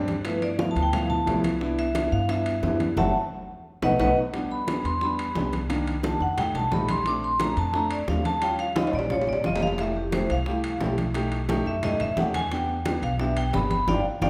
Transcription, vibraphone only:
0.26 B4
0.42 D5
0.60 F5
0.71 A5
0.82 G5
0.94 F5
1.10 A5
1.79 E5
2.12 F5
2.30 E5
2.97 E5 F#5 A5
3.83 B4 D#5 F#5
4.00 B4 D#5 F#5
4.51 B5
4.85 C6
5.03 B5
6.05 A5
6.22 F#5
6.38 G5
6.55 A5
6.73 B5
6.90 C6
7.08 D6
7.24 C6
7.42 A#5
7.58 A5
7.75 A#5
7.92 D5
8.10 F5
8.26 A5
8.43 G5
8.60 F5
8.78 D#5
8.95 D5
9.12 C#5
9.29 D5
9.46 D#5
9.63 F5
9.81 E5
9.97 G4
10.14 C5
10.32 F5
11.67 E5
11.84 D#5
12.01 E5
12.19 F#5
12.35 G#5
12.52 G5
13.03 F5
13.21 E5
13.38 G5
13.55 B5
13.71 B5
13.88 D5 F5 G5
14.22 D5 F5 G5

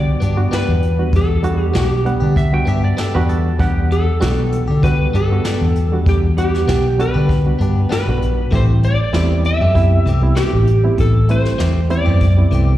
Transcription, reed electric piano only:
Already playing: G3 B3 D4 F#4
0.37 G3 B3 D4 F#4
0.98 G3 B3 D4 F#4
1.43 G3 B3 D4 F#4
2.05 G3 B3 D4 F#5
2.52 G3 B3 D4 F#4
3.15 G3 B3 D4 F#4
3.59 G3 B3 D4 F#5
4.20 G3 B3 D4 F#4
4.83 G3 B3 D4 F#4
5.31 G3 B3 D4 F#4
5.92 G3 B3 D4 F#4
6.37 G3 B3 D4 F#5
6.98 G3 B3 D4 F#4
7.46 G3 B3 D4 F#4
8.08 G3 B3 D4 F#4
8.51 G3 A3 C4 E4
9.13 G3 B3 C4 E4
9.74 B3 C4 E4 G4
10.22 G3 B3 C4 E4
10.84 G3 B3 C4 E4
11.29 G3 A3 C4 E4
11.90 G3 B3 C4 E4
12.37 G3 B3 C4 E4

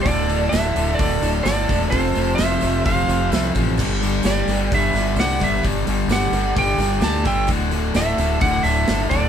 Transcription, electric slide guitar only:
0.03 D5
0.49 E5
0.95 D5
1.43 D5
1.91 C5
2.35 E5
2.86 F5
3.32 E5
4.26 D5
4.75 E5
5.20 F#5
5.44 E5
6.12 F#5
6.58 G5
7.04 A5
7.27 G5
7.96 E5
8.42 F#5
8.63 E5
9.10 D5

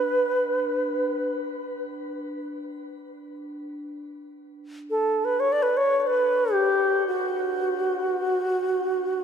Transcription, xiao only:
Already playing: B4
4.90 A4
5.25 B4
5.40 C#5
5.52 D5
5.63 B4
5.77 C#5
6.00 C#5
6.07 B4
6.53 G4
7.07 F#4

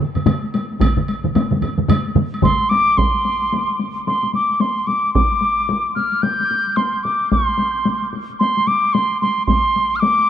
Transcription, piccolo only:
2.43 C6
2.69 D6
2.97 C6
4.07 C6
4.35 D6
4.61 C6
4.87 D6
5.14 D6
5.95 F6
6.22 G6
6.76 C6
7.03 D6
7.32 C6
8.39 C6
8.67 D6
8.93 C6
9.21 C6
9.46 C6
9.96 D6 F6

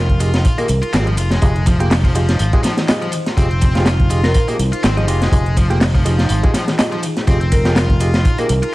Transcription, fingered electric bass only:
Already playing: F1
0.69 C2
0.82 muted fingered electric bass stroke
0.93 G#1
1.18 F1
1.42 F1
2.40 G#1
3.37 F1
4.59 C2
4.73 muted fingered electric bass stroke
4.83 G#1
5.08 F1
5.32 F1
6.30 G#1
7.27 F1
8.49 C2
8.63 muted fingered electric bass stroke

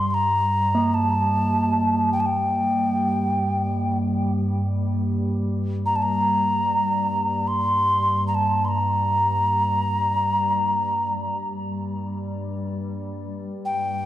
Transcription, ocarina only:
Already playing: C6
0.11 A#5 C6
0.94 A5
2.13 G5
2.20 A5
2.26 G5
5.86 A#5
5.96 A5
6.03 A#5
7.48 C6
8.27 A#5
8.35 A5
8.65 A#5 C6
13.65 G5

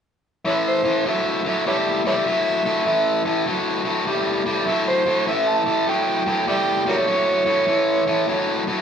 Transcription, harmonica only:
0.47 B4 C#5 E5
0.68 C5
1.09 E5
1.48 E5
1.67 B4 C#5 E5
2.07 B4 C#5 E5
4.67 E5
4.88 C5
5.27 E5
5.49 A5
5.89 G5
6.49 D5 E5 G5
6.89 F#4 A#4 C#5

